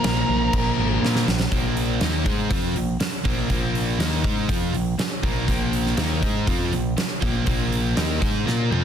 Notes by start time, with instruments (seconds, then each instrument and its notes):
Already playing: overdriven electric guitar A#2 F3 A#3, tonewheel organ A#3 F4 C5, lead electric guitar A#4 A#5
0.03 picked electric bass A#1, overdriven electric guitar A#2 D3 F3 A#3, snare, crash
0.07 overdriven electric guitar D4
0.29 picked electric bass A#1
0.52 picked electric bass A#1, overdriven electric guitar A#2 F3 A#3, kick, crash
0.78 picked electric bass G#1, overdriven electric guitar A#2 F3 A#3
1.02 picked electric bass A#2, snare
1.15 snare
1.27 picked electric bass A#1, snare
1.40 snare
1.52 picked electric bass A#1, overdriven electric guitar A#2 F3 A#3, kick, open hi-hat
1.77 open hi-hat
2.01 picked electric bass D#2, overdriven electric guitar D#3 A#3 D#4, snare, open hi-hat
2.26 picked electric bass G#2, overdriven electric guitar G#3 D#4 G#4, kick, open hi-hat
2.50 picked electric bass F2, overdriven electric guitar F3 C4 F4, kick, open hi-hat
2.75 picked electric bass A#1, overdriven electric guitar A#2 F3, open hi-hat
3.00 muted picked electric bass stroke, muted distorted electric guitar stroke, muted overdriven electric guitar stroke, snare, open hi-hat
3.25 picked electric bass A#1, overdriven electric guitar A#2 F3 A#3, kick, open hi-hat
3.50 picked electric bass A#1, overdriven electric guitar A#2 F3 A#3, kick, open hi-hat
3.75 open hi-hat
3.99 picked electric bass D#2, overdriven electric guitar D#3 A#3 D#4, snare, open hi-hat
4.24 picked electric bass G#2, overdriven electric guitar G#3 D#4 G#4, kick, open hi-hat
4.49 picked electric bass F2, overdriven electric guitar F3 C4 F4, kick, open hi-hat
4.73 picked electric bass A#1, overdriven electric guitar A#2 F3, open hi-hat
4.98 muted picked electric bass stroke, muted overdriven electric guitar stroke, muted distorted electric guitar stroke, snare, open hi-hat
5.23 picked electric bass A#1, overdriven electric guitar A#2 F3 A#3, kick, open hi-hat
5.47 picked electric bass A#1, overdriven electric guitar A#2 F3 A#3, kick, open hi-hat
5.73 open hi-hat
5.86 snare
5.97 picked electric bass D#2, overdriven electric guitar D#3 A#3 D#4, snare, open hi-hat
6.22 picked electric bass G#2, overdriven electric guitar G#3 D#4 G#4, kick, open hi-hat
6.47 picked electric bass F2, overdriven electric guitar F3 C4 F4, kick, open hi-hat
6.72 picked electric bass A#1, overdriven electric guitar A#2 F3, open hi-hat
6.97 muted distorted electric guitar stroke, muted overdriven electric guitar stroke, muted picked electric bass stroke, snare, open hi-hat
7.22 picked electric bass A#1, overdriven electric guitar A#2 F3 A#3, kick, open hi-hat
7.46 picked electric bass A#1, overdriven electric guitar A#2 F3 A#3, kick, open hi-hat
7.72 open hi-hat
7.96 picked electric bass D#2, overdriven electric guitar D#3 A#3 D#4, snare, open hi-hat
8.21 picked electric bass G#2, overdriven electric guitar G#3 D#4 G#4, kick, open hi-hat
8.47 picked electric bass A#2, overdriven electric guitar A#3 F4 A#4, snare
8.71 picked electric bass F2, overdriven electric guitar F3 C4 F4, high tom